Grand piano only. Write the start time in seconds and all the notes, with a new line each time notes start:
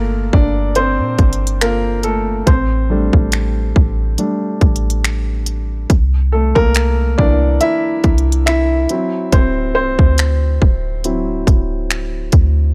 Already playing: A3 A#3 F4 A4 A#4
0.34 D4 D5
0.76 C4 C5
1.61 A#3 F4 A4 A#4
2.04 A3 A4
2.47 C4 C5
2.90 G3 A3 D4
4.18 G3 A3 D4
6.32 A3 A4
6.55 A#3 A#4
7.18 E3 A#3 D4 D5
7.61 E4 E5
8.46 E4 E5
8.90 F#3 C4 E4
9.33 C4 C5
9.75 C4 C5
11.04 F#3 C4 E4